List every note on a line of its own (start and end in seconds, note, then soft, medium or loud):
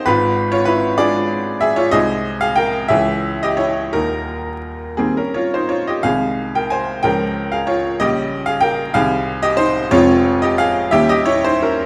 0.06 0.97 G#1 medium
0.06 0.97 G#2 medium
0.06 0.50 F4 medium
0.06 0.52 B4 loud
0.52 0.67 F4 medium
0.52 0.68 C#5 loud
0.65 0.97 E4 medium
0.65 0.99 B4 loud
0.98 1.89 G#3 medium
0.98 1.89 D4 medium
0.98 1.76 F4 medium
0.98 1.57 G#4 medium
0.98 1.61 D5 loud
1.61 1.77 G#4 loud
1.61 1.77 E5 loud
1.76 1.92 F4 medium
1.76 1.93 C#5 loud
1.91 2.88 C2 medium
1.91 2.87 G#3 medium
1.91 2.87 C4 medium
1.91 2.87 D#4 medium
1.91 2.38 G#4 loud
1.91 2.41 D#5 loud
2.41 2.57 G#4 medium
2.41 2.58 F5 loud
2.56 2.89 A#4 medium
2.56 2.90 G5 loud
2.88 3.90 C#2 medium
2.88 3.89 E3 medium
2.88 3.89 G#3 medium
2.88 3.89 C#4 medium
2.88 3.38 G#4 medium
2.88 3.41 E5 loud
3.43 3.59 G4 medium
3.43 3.60 D#5 loud
3.57 3.91 E4 medium
3.57 3.93 C#5 loud
3.93 4.96 D#1 medium
3.93 4.96 D#2 medium
3.93 4.96 D#4 medium
3.93 4.99 A#4 loud
4.97 5.99 D#3 medium
4.97 5.99 G3 medium
4.97 5.99 A#3 medium
4.97 5.16 C4 medium
4.97 5.16 G#4 medium
5.17 5.34 C#4 medium
5.17 5.35 A#4 medium
5.34 5.52 F4 medium
5.34 5.52 C#5 medium
5.54 5.70 D#4 medium
5.54 5.71 C5 medium
5.69 5.86 F4 medium
5.69 5.87 C#5 medium
5.87 6.04 G4 medium
5.87 6.04 D#5 medium
6.03 7.00 C2 medium
6.03 6.99 D#3 medium
6.03 6.99 G#3 medium
6.03 6.99 D#4 medium
6.03 6.50 G#4 medium
6.03 6.54 F5 loud
6.55 6.70 A#4 medium
6.55 6.71 G5 medium
6.70 7.01 C5 medium
6.70 7.03 G#5 loud
7.03 7.96 C#2 medium
7.03 7.95 F3 medium
7.03 7.95 G#3 medium
7.03 7.96 C#4 medium
7.03 7.48 A#4 medium
7.03 7.50 G5 loud
7.52 7.67 G#4 medium
7.52 7.67 F5 medium
7.67 7.97 F4 medium
7.67 7.99 C#5 loud
8.00 8.92 A#1 medium
8.00 8.92 C#3 medium
8.00 8.92 G3 medium
8.00 8.92 C#4 medium
8.00 8.44 G4 medium
8.00 8.47 D#5 loud
8.46 8.62 G#4 medium
8.46 8.62 F5 loud
8.61 8.92 A#4 medium
8.61 8.94 G5 loud
8.94 9.89 C2 loud
8.94 9.88 D#3 medium
8.94 9.89 G3 medium
8.94 9.89 C4 medium
8.94 9.40 G#4 loud
8.94 9.43 F5 loud
9.43 9.58 G4 medium
9.43 9.59 D#5 loud
9.57 9.89 D#4 medium
9.57 9.91 C5 loud
9.91 10.89 F1 medium
9.91 10.89 F2 loud
9.91 10.89 C3 medium
9.91 10.89 G#3 medium
9.91 10.89 C4 medium
9.91 10.38 F4 loud
9.91 10.42 C#5 loud
10.42 10.58 G4 medium
10.42 10.59 D#5 loud
10.58 10.91 G#4 loud
10.58 10.93 F5 loud
10.91 11.86 D#2 medium
10.91 11.86 D#3 medium
10.91 11.86 G3 medium
10.91 11.62 C#4 medium
10.91 11.09 G4 loud
10.91 11.10 E5 loud
11.09 11.27 G4 medium
11.09 11.28 D#5 loud
11.26 11.44 E4 medium
11.26 11.45 C#5 loud
11.44 11.63 D#4 medium
11.44 11.63 C5 loud
11.62 11.86 C#4 medium
11.62 11.86 A#4 medium